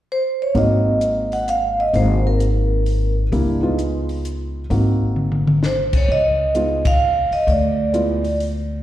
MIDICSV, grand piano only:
0, 0, Header, 1, 2, 480
1, 0, Start_track
1, 0, Tempo, 461894
1, 569, Time_signature, 3, 2, 24, 8
1, 9175, End_track
2, 0, Start_track
2, 0, Title_t, "Grand piano"
2, 0, Program_c, 0, 0
2, 569, Note_on_c, 0, 58, 58
2, 571, Note_on_c, 0, 60, 52
2, 571, Note_on_c, 0, 63, 53
2, 576, Note_on_c, 0, 66, 58
2, 1912, Note_off_c, 0, 58, 0
2, 1913, Note_off_c, 0, 60, 0
2, 1913, Note_off_c, 0, 63, 0
2, 1915, Note_off_c, 0, 66, 0
2, 2009, Note_on_c, 0, 58, 52
2, 2016, Note_on_c, 0, 60, 47
2, 2016, Note_on_c, 0, 63, 47
2, 2023, Note_on_c, 0, 66, 51
2, 3351, Note_off_c, 0, 58, 0
2, 3354, Note_off_c, 0, 60, 0
2, 3354, Note_off_c, 0, 63, 0
2, 3358, Note_off_c, 0, 66, 0
2, 3449, Note_on_c, 0, 55, 54
2, 3455, Note_on_c, 0, 58, 54
2, 3458, Note_on_c, 0, 62, 50
2, 3461, Note_on_c, 0, 64, 64
2, 3735, Note_off_c, 0, 55, 0
2, 3737, Note_off_c, 0, 58, 0
2, 3739, Note_off_c, 0, 62, 0
2, 3741, Note_off_c, 0, 64, 0
2, 3761, Note_on_c, 0, 56, 54
2, 3766, Note_on_c, 0, 63, 53
2, 3768, Note_on_c, 0, 59, 52
2, 3771, Note_on_c, 0, 65, 60
2, 4788, Note_off_c, 0, 56, 0
2, 4790, Note_off_c, 0, 63, 0
2, 4791, Note_off_c, 0, 59, 0
2, 4792, Note_off_c, 0, 65, 0
2, 4884, Note_on_c, 0, 60, 46
2, 4885, Note_on_c, 0, 58, 54
2, 4892, Note_on_c, 0, 63, 48
2, 4895, Note_on_c, 0, 66, 56
2, 6228, Note_off_c, 0, 58, 0
2, 6228, Note_off_c, 0, 60, 0
2, 6232, Note_off_c, 0, 63, 0
2, 6233, Note_off_c, 0, 66, 0
2, 6802, Note_on_c, 0, 56, 52
2, 6807, Note_on_c, 0, 59, 47
2, 6813, Note_on_c, 0, 63, 44
2, 6815, Note_on_c, 0, 65, 60
2, 7091, Note_off_c, 0, 56, 0
2, 7093, Note_off_c, 0, 59, 0
2, 7096, Note_off_c, 0, 63, 0
2, 7097, Note_off_c, 0, 65, 0
2, 8244, Note_on_c, 0, 56, 52
2, 8244, Note_on_c, 0, 59, 47
2, 8251, Note_on_c, 0, 64, 47
2, 8253, Note_on_c, 0, 65, 57
2, 8533, Note_off_c, 0, 56, 0
2, 8533, Note_off_c, 0, 59, 0
2, 8536, Note_off_c, 0, 64, 0
2, 8537, Note_off_c, 0, 65, 0
2, 9175, End_track
0, 0, End_of_file